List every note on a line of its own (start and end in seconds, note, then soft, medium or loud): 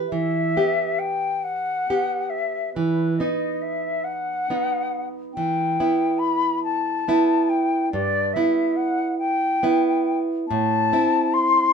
0.00 0.10 B4 soft
0.08 1.00 E5 medium
0.12 0.55 E3 soft
0.57 1.85 B3 soft
0.57 1.85 G4 soft
0.99 1.45 G5 medium
1.44 2.31 F#5 medium
1.90 2.72 B3 soft
1.90 2.72 G4 soft
2.29 2.73 E5 medium
2.74 3.18 E3 soft
2.74 3.17 B4 medium
3.17 4.46 B3 soft
3.17 4.46 D#4 soft
3.17 3.63 D#5 medium
3.61 4.05 E5 medium
4.04 5.06 F#5 medium
4.50 5.32 B3 soft
4.50 5.32 D#4 soft
5.33 5.78 E3 medium
5.33 6.20 G5 medium
5.80 7.04 B3 soft
5.80 7.04 E4 soft
6.18 6.62 B5 medium
6.64 7.50 A5 medium
7.08 7.89 B3 soft
7.08 7.89 E4 soft
7.49 7.91 G5 medium
7.92 8.33 G2 medium
7.92 8.35 D5 medium
8.33 9.59 B3 soft
8.33 9.59 E4 soft
8.33 8.78 E5 medium
8.76 9.18 F#5 medium
9.18 10.19 G5 medium
9.63 10.45 B3 soft
9.63 10.45 E4 soft
10.48 10.91 A2 medium
10.48 11.35 A5 medium
10.93 11.73 C4 soft
10.93 11.73 E4 soft
11.33 11.73 C6 medium